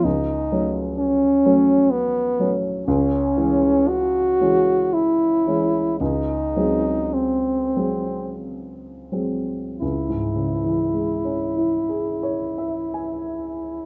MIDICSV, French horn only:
0, 0, Header, 1, 2, 480
1, 0, Start_track
1, 0, Key_signature, 4, "minor"
1, 0, Tempo, 936037
1, 27, Time_signature, 3, 2, 24, 8
1, 1467, Tempo, 1030928
1, 2427, Tempo, 1073345
1, 2907, Tempo, 1134216
1, 3387, Tempo, 1276596
1, 3867, Tempo, 1398601
1, 4347, Tempo, 1363636
1, 5772, End_track
2, 0, Start_track
2, 0, Title_t, "French horn"
2, 0, Program_c, 0, 60
2, 22, Note_on_c, 0, 63, 58
2, 413, Note_off_c, 0, 63, 0
2, 500, Note_on_c, 0, 61, 60
2, 979, Note_on_c, 0, 59, 69
2, 987, Note_off_c, 0, 61, 0
2, 1318, Note_off_c, 0, 59, 0
2, 1469, Note_on_c, 0, 61, 56
2, 1944, Note_on_c, 0, 66, 78
2, 1951, Note_off_c, 0, 61, 0
2, 2434, Note_on_c, 0, 64, 62
2, 2440, Note_off_c, 0, 66, 0
2, 2908, Note_off_c, 0, 64, 0
2, 2910, Note_on_c, 0, 63, 58
2, 3389, Note_on_c, 0, 60, 50
2, 3395, Note_off_c, 0, 63, 0
2, 3868, Note_off_c, 0, 60, 0
2, 4342, Note_on_c, 0, 64, 35
2, 5772, Note_off_c, 0, 64, 0
2, 5772, End_track
0, 0, End_of_file